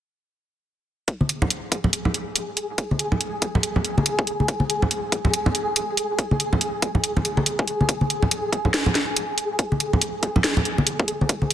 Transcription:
1.08 synth texture G#4, kick, closed hi-hat
1.21 high conga
1.29 closed hi-hat
1.42 low conga
1.50 closed hi-hat
1.72 kick, closed hi-hat
1.84 low conga
1.93 closed hi-hat
2.05 low conga
2.14 closed hi-hat
2.36 closed hi-hat
2.57 closed hi-hat
2.78 kick, closed hi-hat
2.91 high conga
2.99 closed hi-hat
3.12 low conga
3.21 closed hi-hat
3.42 kick, closed hi-hat
3.55 low conga
3.63 closed hi-hat
3.76 low conga
3.85 closed hi-hat
3.98 high conga
4.06 closed hi-hat
4.19 kick
4.27 closed hi-hat
4.40 high conga
4.48 kick, closed hi-hat
4.60 high conga
4.70 closed hi-hat
4.82 low conga
4.91 closed hi-hat
5.12 kick, closed hi-hat
5.25 low conga
5.34 closed hi-hat
5.46 low conga
5.55 closed hi-hat
5.76 closed hi-hat
5.97 closed hi-hat
6.19 kick, closed hi-hat
6.31 high conga
6.40 closed hi-hat
6.53 low conga
6.61 closed hi-hat
6.82 kick, closed hi-hat
6.95 low conga
7.04 closed hi-hat
7.17 high conga, low conga
7.25 closed hi-hat
7.37 high conga
7.46 closed hi-hat
7.59 kick
7.68 closed hi-hat
7.81 high conga
7.89 kick, closed hi-hat
8.01 high conga
8.10 closed hi-hat
8.23 low conga
8.31 closed hi-hat
8.53 kick, closed hi-hat
8.65 low conga
8.74 snare, closed hi-hat
8.86 low conga
8.95 snare, closed hi-hat
9.16 closed hi-hat
9.38 closed hi-hat
9.59 kick, closed hi-hat
9.72 high conga
9.80 closed hi-hat
9.93 low conga
10.01 closed hi-hat
10.23 kick, closed hi-hat
10.36 low conga
10.44 snare, closed hi-hat
10.57 low conga
10.65 closed hi-hat
10.78 high conga
10.87 closed hi-hat
10.99 kick
11.08 closed hi-hat
11.21 high conga
11.29 kick, closed hi-hat
11.42 high conga
11.50 closed hi-hat

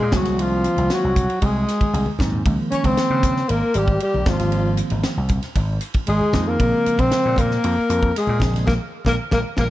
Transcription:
Already playing: alto saxophone G#3, tenor saxophone G#4
0.00 slap bass A#2, high conga
0.12 slap bass C2, tine electric piano D#3 G#3 A#3 C4, alto saxophone F#3, kick, snare, hi-hat pedal, ride, high conga, low conga
0.17 tenor saxophone F#4
0.25 snare, ride, high conga
0.39 alto saxophone F3, tenor saxophone F4, ride
0.64 hi-hat pedal, ride
0.77 slap bass C2, ride, high conga
0.90 alto saxophone F#3, snare, ride
0.94 tenor saxophone F#4
1.04 slap bass C2
1.16 kick, hi-hat pedal, ride, low conga
1.30 ride
1.41 slap bass C2, alto saxophone G#3, kick, ride
1.46 tenor saxophone G#4
1.68 snare, hi-hat pedal, ride
1.81 kick, ride, high conga
1.93 slap bass C2, ride, high conga
2.06 high conga
2.19 slap bass G#2, tine electric piano D#3 F#3 A#3 C4, kick, snare, hi-hat pedal, ride, low conga
2.32 low conga
2.46 slap bass C#2, tine electric piano D#3 F3 G#3 A#3, kick, ride
2.70 alto saxophone C#4, muted slap bass stroke, hi-hat pedal, ride
2.75 tenor saxophone C#5
2.84 slap bass C#2, alto saxophone C4, tenor saxophone C5, kick, ride, high conga
2.97 snare, ride
3.10 slap bass C#3
3.23 kick, hi-hat pedal, ride, low conga
3.36 snare
3.48 slap bass G#1, alto saxophone A#3, tenor saxophone A#4, ride
3.63 muted slap bass stroke
3.74 slap bass G#1, alto saxophone G3, hi-hat pedal, ride
3.78 tenor saxophone G4
3.88 kick
4.00 alto saxophone G3, ride
4.04 tenor saxophone G4
4.14 slap bass A#1, high conga
4.26 slap bass G#1, tine electric piano D#3 F3 A#3 C4, alto saxophone F3, tenor saxophone F4, kick, snare, hi-hat pedal, ride, high conga, low conga
4.39 snare, ride, high conga
4.52 ride
4.77 hi-hat pedal, ride
4.90 slap bass G#1, ride, high conga
5.04 snare, ride
5.17 slap bass C2
5.28 kick, hi-hat pedal, ride, low conga
5.42 snare, ride
5.55 slap bass G#1, kick, ride
5.81 hi-hat pedal, ride
5.94 kick, ride
6.07 slap bass G#1, alto saxophone G#3, tenor saxophone G#4, ride
6.21 high conga
6.33 slap bass F2, tine electric piano D#3 F3 A#3 D#4, kick, snare, hi-hat pedal, ride, high conga, low conga
6.47 alto saxophone A#3, tenor saxophone A#4
6.60 slap bass A#1, tine electric piano C#3 F3 G#3 C4, kick, ride
6.86 muted slap bass stroke, hi-hat pedal, ride
6.98 slap bass A#1, alto saxophone C4, tenor saxophone C5, kick, ride, high conga
7.12 snare, ride
7.25 slap bass A#2
7.36 alto saxophone A#3, kick, hi-hat pedal, ride, low conga
7.41 tenor saxophone A#4
7.51 snare
7.64 slap bass F2, ride
7.78 muted slap bass stroke
7.90 slap bass F2, hi-hat pedal, ride
8.03 kick
8.16 alto saxophone G#3, tenor saxophone G#4, snare, ride
8.27 slap bass A#2, high conga
8.40 slap bass A#1, tine electric piano C#3 F3 G#3 C4, kick, snare, hi-hat pedal, ride, high conga, low conga
8.54 snare, ride, high conga
8.67 slap bass A#1, tine electric piano F3 G#3 A#3, alto saxophone A#3, tenor saxophone A#4, kick, snare, high conga
9.05 slap bass A#1, tine electric piano F3 G#3 A#3, alto saxophone A#3, kick, snare, high conga
9.09 tenor saxophone A#4
9.31 slap bass A#1, tine electric piano F3 G#3 A#3, alto saxophone A#3, tenor saxophone A#4, kick, snare, high conga
9.57 slap bass A#1, tine electric piano F3 G#3 A#3, alto saxophone A#3, kick, snare, high conga
9.61 tenor saxophone A#4

